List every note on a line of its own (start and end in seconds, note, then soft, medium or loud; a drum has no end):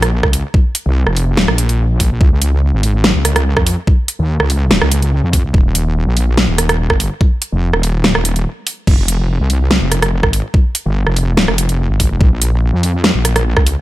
0.00 0.22 A#1 loud
0.00 cross-stick medium
0.00 closed hi-hat soft
0.23 0.42 C#2 loud
0.23 kick medium
0.23 cross-stick medium
0.33 open hi-hat medium
0.54 kick loud
0.75 closed hi-hat medium
0.86 1.05 C2 loud
1.07 1.47 F1 loud
1.07 cross-stick medium
1.17 open hi-hat medium
1.37 snare loud
1.48 2.09 A#1 loud
1.48 cross-stick medium
1.58 closed hi-hat medium
1.69 closed hi-hat soft
2.00 kick medium
2.00 open hi-hat medium
2.11 2.19 A#1 loud
2.21 2.30 C#2 loud
2.21 kick loud
2.32 2.72 C#2 loud
2.42 closed hi-hat medium
2.73 3.13 G#1 medium
2.83 open hi-hat medium
3.04 snare loud
3.15 3.55 C#2 loud
3.25 cross-stick medium
3.25 closed hi-hat medium
3.36 cross-stick medium
3.36 closed hi-hat soft
3.57 3.76 F2 loud
3.57 kick medium
3.57 cross-stick medium
3.67 open hi-hat medium
3.87 kick loud
4.08 closed hi-hat medium
4.19 4.38 D#2 loud
4.40 4.80 C#2 loud
4.40 cross-stick medium
4.50 open hi-hat medium
4.71 snare loud
4.82 5.21 C#2 loud
4.82 cross-stick medium
4.92 closed hi-hat medium
5.02 closed hi-hat soft
5.23 5.42 F2 loud
5.33 kick medium
5.33 open hi-hat medium
5.44 5.52 C#2 loud
5.54 5.63 D#1 loud
5.54 kick loud
5.65 6.05 D#1 loud
5.75 closed hi-hat medium
6.07 6.47 A#1 loud
6.17 open hi-hat medium
6.37 snare loud
6.48 6.88 D#1 loud
6.58 cross-stick medium
6.58 closed hi-hat medium
6.69 cross-stick medium
6.69 closed hi-hat soft
6.90 7.09 G1 loud
6.90 kick medium
6.90 cross-stick medium
7.00 open hi-hat loud
7.21 kick loud
7.42 closed hi-hat medium
7.52 7.72 F1 loud
7.73 8.13 D#1 loud
7.73 cross-stick medium
7.83 open hi-hat medium
8.04 snare loud
8.15 8.46 D#1 loud
8.15 cross-stick medium
8.25 closed hi-hat medium
8.36 closed hi-hat soft
8.67 open hi-hat loud
8.87 8.97 F1 loud
8.87 kick loud
8.87 crash medium
8.98 9.38 F1 loud
9.08 closed hi-hat medium
9.40 9.80 C2 loud
9.50 open hi-hat medium
9.71 snare loud
9.81 10.21 F1 medium
9.92 cross-stick medium
9.92 closed hi-hat medium
10.02 cross-stick medium
10.02 closed hi-hat soft
10.23 10.42 G#1 loud
10.23 kick medium
10.23 cross-stick medium
10.33 open hi-hat loud
10.54 kick loud
10.75 closed hi-hat medium
10.86 11.05 G1 loud
11.07 11.47 F1 medium
11.07 cross-stick medium
11.16 open hi-hat medium
11.37 snare loud
11.48 11.88 F1 medium
11.48 cross-stick medium
11.58 closed hi-hat medium
11.69 closed hi-hat soft
11.90 12.09 G#1 loud
12.00 kick medium
12.00 open hi-hat loud
12.11 12.19 F1 loud
12.21 12.30 A#1 loud
12.21 kick loud
12.31 12.71 A#1 loud
12.42 closed hi-hat medium
12.73 13.13 F2 loud
12.83 open hi-hat medium
13.04 snare loud
13.15 13.55 A#1 loud
13.25 cross-stick medium
13.25 closed hi-hat medium
13.36 cross-stick medium
13.36 closed hi-hat soft
13.57 13.76 C#2 medium
13.57 kick medium
13.57 cross-stick medium
13.67 open hi-hat medium